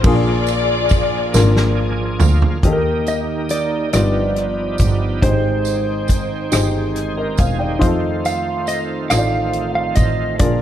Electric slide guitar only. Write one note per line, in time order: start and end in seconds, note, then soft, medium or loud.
3.08 3.20 D#5 medium
3.51 3.92 D5 medium
3.93 5.27 D5 medium
5.23 6.48 C5 medium
8.26 8.70 F5 medium
8.68 8.80 D#5 medium
9.10 9.71 F5 medium
9.75 9.96 F5 medium
9.95 10.39 D#5 medium
10.39 10.62 D5 medium